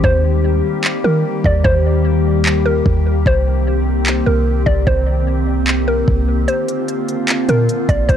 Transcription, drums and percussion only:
0.04 kick
0.84 clap
1.44 kick
1.65 kick
2.46 clap
2.86 kick
3.26 kick
4.06 clap
4.67 kick
4.87 kick
5.68 clap
6.08 kick
6.48 closed hi-hat
6.68 closed hi-hat
6.88 closed hi-hat
7.08 closed hi-hat
7.29 clap, closed hi-hat
7.49 closed hi-hat
7.69 closed hi-hat
7.89 kick, closed hi-hat
8.09 kick, closed hi-hat

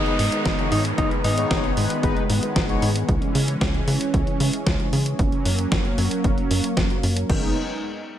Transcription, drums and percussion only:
0.06 closed hi-hat
0.19 open hi-hat
0.32 closed hi-hat
0.45 kick, snare, closed hi-hat
0.59 closed hi-hat
0.72 open hi-hat
0.85 closed hi-hat
0.98 kick, closed hi-hat
1.11 closed hi-hat
1.24 open hi-hat
1.38 closed hi-hat
1.51 kick, snare, closed hi-hat
1.64 closed hi-hat
1.77 open hi-hat
1.90 closed hi-hat
2.03 kick, closed hi-hat
2.17 closed hi-hat
2.30 open hi-hat
2.43 closed hi-hat
2.56 kick, snare, closed hi-hat
2.69 closed hi-hat
2.82 open hi-hat
2.96 closed hi-hat
3.09 kick, closed hi-hat
3.22 closed hi-hat
3.35 open hi-hat
3.48 closed hi-hat
3.61 kick, snare, closed hi-hat
3.74 closed hi-hat
3.88 open hi-hat
4.01 closed hi-hat
4.14 kick, closed hi-hat
4.27 closed hi-hat
4.40 open hi-hat
4.53 closed hi-hat
4.66 kick, snare, closed hi-hat
4.80 closed hi-hat
4.93 open hi-hat
5.06 closed hi-hat
5.19 kick, closed hi-hat
5.32 closed hi-hat
5.46 open hi-hat
5.59 closed hi-hat
5.72 kick, snare, closed hi-hat
5.85 closed hi-hat
5.98 open hi-hat
6.11 closed hi-hat
6.24 kick, closed hi-hat
6.38 closed hi-hat
6.51 open hi-hat
6.64 closed hi-hat
6.77 kick, snare, closed hi-hat
6.90 closed hi-hat
7.03 open hi-hat
7.17 closed hi-hat
7.30 kick, crash

